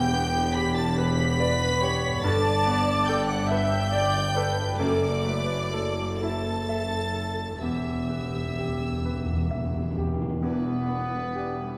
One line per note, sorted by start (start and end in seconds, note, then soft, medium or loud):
0.00 2.19 E1 loud
0.00 2.17 E2 medium
0.00 2.19 E2 loud
0.00 2.19 E2 medium
0.00 2.09 B3 medium
0.00 2.14 D4 medium
0.00 1.02 E4 medium
0.00 0.94 G4 loud
0.00 3.56 G4 medium
0.00 0.53 G5 loud
0.00 0.55 G6 loud
0.14 0.80 B3 medium
0.53 1.22 G4 medium
0.53 0.76 B5 loud
0.53 0.75 B6 loud
0.76 0.97 A5 loud
0.76 0.97 A6 loud
0.96 1.37 G4 loud
0.96 1.65 B4 medium
0.96 2.23 B5 loud
0.96 2.23 B6 loud
1.39 1.81 B4 loud
1.39 2.07 D5 medium
1.81 2.24 G4 medium
1.81 2.24 C#5 loud
2.06 4.75 G2 medium
2.10 4.78 B3 medium
2.15 6.05 D4 medium
2.19 4.74 A4 medium
2.19 3.06 A6 loud
2.24 4.77 G1 loud
2.24 4.77 G2 loud
2.24 4.77 G2 medium
2.24 3.51 D5 loud
2.24 3.07 A5 loud
2.65 3.33 B3 medium
3.06 3.76 A4 medium
3.06 3.29 G5 loud
3.06 3.28 G6 loud
3.26 3.50 F#5 loud
3.26 3.48 F#6 loud
3.48 4.20 B4 medium
3.48 3.93 E5 loud
3.48 4.80 G5 loud
3.48 4.79 G6 loud
3.93 4.63 D5 medium
3.93 4.36 D5 loud
4.36 4.81 A4 medium
4.36 4.80 B4 loud
4.62 7.57 F#2 medium
4.67 7.59 A3 medium
4.72 7.52 E4 medium
4.76 7.58 F#2 medium
4.76 7.63 A4 medium
4.76 6.18 D6 loud
4.80 7.58 F#1 medium
4.80 7.58 F#2 medium
4.80 5.26 A4 medium
4.80 6.19 D5 loud
5.26 6.02 A3 medium
5.26 5.73 B4 medium
5.73 7.62 A4 medium
5.73 6.50 A4 medium
6.19 6.97 E4 medium
6.19 7.59 A5 loud
6.19 7.61 A6 loud
6.69 7.43 E5 medium
7.15 7.62 A4 medium
7.44 10.37 E2 medium
7.49 10.87 B3 soft
7.54 11.44 E4 soft
7.58 10.18 E1 medium
7.58 7.69 E2 soft
7.58 11.33 G4 soft
7.58 9.69 G4 medium
7.58 9.93 E5 medium
7.58 9.97 E6 medium
7.62 10.39 E2 medium
7.62 10.18 E2 medium
7.70 7.77 E2 soft
7.79 7.85 E2 soft
7.86 7.94 E2 soft
7.95 8.02 E2 soft
8.03 8.09 E2 soft
8.10 8.85 B3 soft
8.18 8.26 E2 soft
8.28 8.35 E2 soft
8.36 8.43 E2 medium
8.44 8.51 E2 medium
8.53 8.59 E2 medium
8.59 8.67 E2 medium
8.59 9.33 G4 soft
8.68 8.75 E2 medium
8.76 8.84 E2 medium
8.85 8.91 E2 medium
8.93 9.00 E2 medium
9.01 9.08 E2 medium
9.05 9.16 E2 medium
9.05 9.79 B4 soft
9.18 9.25 E2 medium
9.26 9.32 E2 medium
9.33 9.40 E2 medium
9.41 9.48 E2 medium
9.49 9.56 E2 medium
9.49 10.25 E5 soft
9.57 9.64 E2 medium
9.65 9.73 E2 medium
9.74 9.80 E2 medium
9.82 9.89 E2 medium
9.91 9.97 E2 medium
9.97 10.04 E2 medium
9.97 10.43 G4 soft
10.06 10.13 E2 medium
10.14 10.21 E2 medium
10.22 10.28 E2 loud
10.29 10.36 E2 loud
10.42 11.65 E1 medium
10.42 11.78 E2 medium
10.42 11.65 E2 medium
10.42 10.64 E3 medium
10.42 11.77 B3 medium
10.42 10.63 D4 medium
10.42 11.77 B4 medium
10.42 10.64 D5 medium
10.64 11.78 B2 soft
10.64 10.88 G3 medium
10.64 10.88 E4 medium
10.64 10.88 B4 medium
10.87 11.11 E3 medium
10.87 11.78 B3 soft
10.87 11.63 B3 soft
10.87 11.11 D4 medium
10.87 11.11 D5 medium
11.10 11.34 G3 medium
11.10 11.57 D4 soft
11.10 11.34 E4 soft
11.10 11.34 B4 soft
11.34 11.56 E3 soft
11.34 11.56 D4 soft
11.34 11.78 G4 soft
11.34 11.78 G4 medium
11.34 11.57 D5 soft
11.57 11.78 G3 soft
11.57 11.78 D4 soft
11.57 11.78 E4 medium
11.57 11.78 B4 soft